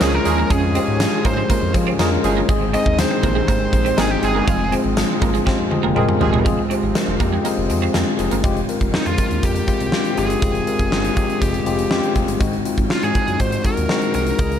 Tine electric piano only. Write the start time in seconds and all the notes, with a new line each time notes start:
Already playing: A#4
0.00 G#3 C#4 F4 G#4
0.25 G#3 C#4 F4 G#4
0.50 G#3 C#4 F4 G#4
0.74 G#3 C#4 F4 G4
1.00 G#3 C#4 F4 G#4
1.25 G#3 C#4 F4 G#4
1.50 G#3 C#4 F4 A#4
1.74 G#3 C#4 F4 G#4
1.99 G#3 C#4 F4 A#4
2.24 G#3 C#4 F4 G#4
2.48 G#3 C4 D#4 G#4
2.73 G#3 C4 D#4 G#4
2.98 G#3 C4 D#4 G#4
3.23 G#3 C4 D#4 G4
3.47 G#3 C4 D#4 G#4
3.72 G#3 C4 D#4 G#4
3.97 G#3 C4 D#4 G#4
4.21 G#3 C4 D#4 G#4
4.46 G#3 C4 F4 G#4
4.71 G#3 C4 F4 G#4
4.96 G#3 C4 F4 G#4
5.21 G#3 C4 F4 G#4
5.46 G#3 C4 F4 G4
5.71 G#3 C4 F4 G#4 F5
5.83 G5
5.95 G#3 C4 F4 A#4 G#5
6.20 G#3 C4 F4 G4
6.45 G#3 C4 F4 G#4
6.70 G#3 C4 F4 G4
6.95 G#3 C4 F4 A#4
7.19 G#3 C4 F4 G4
7.44 G#3 C4 F4 G#4
7.69 G#3 C4 F4 G#4
7.94 G#3 C4 F4 G#4
8.19 G#3 C4 F4 G#4
8.43 G#3 C4 F4 G4
8.68 G#3 C4 F4 A#4
8.92 G#3 C4 F4 G#4
9.18 G#3 C4 F4 A#4
9.42 G#3 C4 F4 A#4
9.67 G#3 C4 F4 G4
9.92 G#3 C4 F4 G4
10.17 G#3 C4 F4 G4
10.41 G#3 C4 F4 G#4
10.66 G#3 C4 F4 A#4
10.91 G#3 C4 F4 G#4
11.16 G#3 C4 F4 G4
11.41 G#3 C4 F4 G#4
11.66 G#3 C4 F4 G4
11.90 G#3 C4 F4 G4
12.15 G#3 C4 F4 G#4
12.40 G#3 C4 D#4 F#4
12.65 G#3 C4 D#4 F4
12.89 G#3 C4 D#4 F#4
13.15 G#3 C4 D#4 F#4
13.39 G#3 C4 D#4 F#4
13.64 G#3 C4 D#4 F#4
13.89 G#3 C4 D#4 F#4
14.13 G#3 C4 D#4 G#4
14.38 G#3 C#4 F4 G#4